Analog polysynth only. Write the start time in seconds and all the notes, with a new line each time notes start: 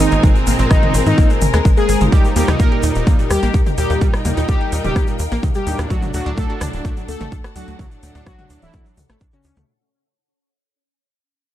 0.00 D#4
0.71 D#4
1.06 D#4
1.77 G#4
2.12 G4
2.36 G4
2.60 A#4
3.31 G4
3.78 G4
4.49 G4
4.84 G4
5.55 G4
5.90 F#4
6.14 F#4
6.38 A4
7.08 A4
7.56 F#4
8.26 F#4
8.62 E4
9.33 C#4